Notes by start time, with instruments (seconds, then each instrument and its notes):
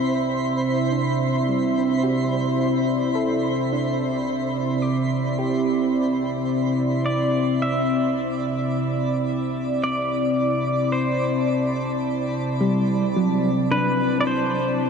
Already playing: analog synth pad C3 C4 E4 D5 E5, synth texture C5 B5, synth pluck A5
0.92 synth pluck D4
1.49 synth pluck G3
2.03 synth pluck F#4 G4
2.60 synth pluck E4
3.15 synth pluck A4
3.72 synth pluck D4
4.82 synth pluck D6
5.39 synth pluck G4
7.06 pedal steel guitar D5
7.57 synth texture D5 B5
7.62 pedal steel guitar E5
9.84 pedal steel guitar D5
10.92 pedal steel guitar C5
11.13 analog synth pad A5
12.61 synth pluck G3
13.16 synth pluck F#3
13.71 synth pluck D4, pedal steel guitar B4
14.21 pedal steel guitar D5
14.27 pedal steel guitar C5